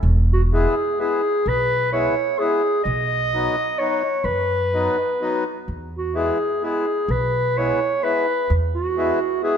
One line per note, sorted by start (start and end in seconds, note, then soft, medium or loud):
0.03 0.65 E1 medium
0.33 0.42 F#4 medium
0.53 0.75 G#3 medium
0.53 0.75 B3 soft
0.53 0.75 E4 medium
0.53 0.96 G#4 medium
0.98 1.21 G#3 medium
0.98 1.21 B3 soft
0.98 1.22 E4 soft
0.98 1.49 G#4 medium
1.46 2.06 B1 medium
1.46 1.92 B4 medium
1.92 2.15 G#3 medium
1.92 2.15 B3 medium
1.92 2.15 E4 medium
1.92 2.40 C#5 medium
2.39 2.62 G#3 medium
2.39 2.62 B3 soft
2.39 2.62 E4 medium
2.39 2.83 G#4 medium
2.83 3.46 B1 medium
2.83 3.80 D#5 medium
3.34 3.56 F#3 medium
3.34 3.56 B3 soft
3.34 3.56 D#4 medium
3.78 4.02 F#3 medium
3.78 4.02 B3 soft
3.78 4.02 D#4 medium
3.78 4.26 C#5 medium
4.24 4.86 F#2 medium
4.24 5.46 B4 medium
4.73 4.96 F#3 medium
4.73 4.96 B3 medium
4.73 4.97 D#4 medium
5.21 5.44 F#3 medium
5.21 5.44 B3 medium
5.21 5.44 D#4 medium
5.68 6.29 E2 medium
5.96 6.18 F#4 medium
6.15 6.38 G#3 medium
6.15 6.38 B3 medium
6.15 6.38 E4 medium
6.15 6.63 G#4 medium
6.62 6.85 G#3 soft
6.62 6.86 B3 soft
6.62 6.86 E4 medium
6.62 7.12 G#4 medium
7.08 7.70 B1 medium
7.08 7.59 B4 medium
7.57 7.80 G#3 medium
7.57 7.80 B3 medium
7.57 7.80 E4 medium
7.57 8.05 C#5 medium
8.03 8.26 G#3 medium
8.03 8.26 B3 medium
8.03 8.26 E4 medium
8.03 8.50 B4 medium
8.50 9.10 E2 medium
8.74 9.39 F#4 medium
8.96 9.19 G#3 medium
8.96 9.19 B3 medium
8.96 9.20 E4 medium
9.43 9.57 G#3 soft
9.43 9.57 B3 medium
9.43 9.57 E4 medium
9.43 9.57 G#4 medium